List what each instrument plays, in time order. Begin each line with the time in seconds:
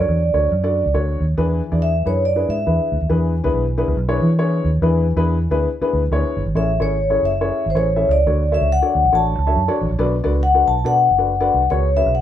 Already playing: upright piano D3, vibraphone D5
0.00 fingered electric bass F#2, upright piano D4 F#4 A4 C#5
0.09 fingered electric bass E2
0.34 fingered electric bass D2, upright piano D4 F#4 A4 C#5
0.52 fingered electric bass F#2
0.63 upright piano D4 F#4 A4 D5
0.86 fingered electric bass C#2
0.94 fingered electric bass D2, upright piano D4 F#4 A4 C#5
1.20 fingered electric bass D#2
1.37 fingered electric bass E2, upright piano E3 D4 E4 G#4 B4
1.72 fingered electric bass E2, upright piano D4 E4 G#4 D5
1.82 vibraphone E5
2.05 fingered electric bass F#2, upright piano D4 E4 G#4 B4, vibraphone C#5
2.25 vibraphone D5
2.36 upright piano D4 E4 G#4 B4
2.49 fingered electric bass G#2, vibraphone E5
2.66 fingered electric bass E2, upright piano D4 E4 G#4 B4
2.92 fingered electric bass D2
3.01 fingered electric bass D#2
3.09 fingered electric bass E2, upright piano E3 B3 D4 E4 G#4 B4
3.44 fingered electric bass C#2, upright piano B3 D4 E4 G#4 B4
3.54 fingered electric bass B1
3.77 upright piano B3 D4 E4 G#4 B4
3.88 fingered electric bass C#2
3.97 fingered electric bass B1
4.08 upright piano B3 D4 E4 G#4 C#5
4.22 fingered electric bass E3
4.39 upright piano B3 D4 E4 G#4 C#5
4.64 fingered electric bass D#2
4.82 fingered electric bass E2, upright piano E3 B3 D4 E4 G#4 B4
5.16 fingered electric bass E2, upright piano B3 D4 E4 G#4 B4
5.50 fingered electric bass D2, upright piano B3 D4 E4 G#4 B4
5.81 upright piano B3 D4 E4 G#4 B4, muted fingered electric bass stroke
5.93 fingered electric bass D2
6.11 fingered electric bass D2, upright piano B3 D4 E4 G#4 C#5
6.37 fingered electric bass G1
6.46 fingered electric bass G#1
6.55 fingered electric bass A1, upright piano A3 C#4 E4 G#4 A4 C#5, vibraphone E5
6.80 fingered electric bass G#1, upright piano C#4 E4 G#4 A4 C#5, vibraphone C#5
7.10 upright piano C#4 E4 G#4 A4 C#5
7.23 fingered electric bass F#1, vibraphone E5
7.41 upright piano C#4 E4 G#4 A4 C#5
7.66 fingered electric bass G#1
7.70 vibraphone C5
7.75 fingered electric bass A1, upright piano C#4 E4 G#4 A4 C#5, vibraphone C#5
7.96 upright piano C#4 E4 G#4 A4 E5
8.09 fingered electric bass C#2, vibraphone D5
8.26 fingered electric bass D2, upright piano D3 D4 F#4 A4 C#5 D5
8.52 upright piano D4 F#4 A4 C#5 E5, vibraphone E5
8.61 fingered electric bass C#2
8.72 vibraphone F#5
8.82 upright piano D4 F#4 A4 C#5 D5
8.95 fingered electric bass D2
9.04 fingered electric bass B1
9.12 fingered electric bass A1, upright piano D4 F#4 A4 C#5 D5, vibraphone A5
9.39 fingered electric bass C#2
9.46 upright piano D4 F#4 A4 C#5 E5
9.56 fingered electric bass F#2
9.68 upright piano D4 F#4 A4 C#5 D5
9.81 fingered electric bass A1
9.91 fingered electric bass A#1
9.99 fingered electric bass B1, upright piano B2 D4 F#4 A4 B4 D5
10.24 fingered electric bass C#2, upright piano D4 F#4 A4 B4 D5
10.43 vibraphone F#5
10.54 upright piano D4 F#4 A4 B4 D5
10.68 fingered electric bass B1, vibraphone A5
10.84 fingered electric bass B2, upright piano D4 F#4 A4 B4 D5, vibraphone F#5
11.11 fingered electric bass F#1
11.18 upright piano D4 F#4 A4 B4 D5
11.40 upright piano D4 F#4 A4 B4 D5
11.54 fingered electric bass C2
11.70 fingered electric bass C#2, upright piano C#3 C#4 F#4 G#4 B4 C#5, vibraphone C#5
11.96 upright piano C#4 F#4 G#4 B4 E5, vibraphone E5
12.06 fingered electric bass B1
12.15 vibraphone F#5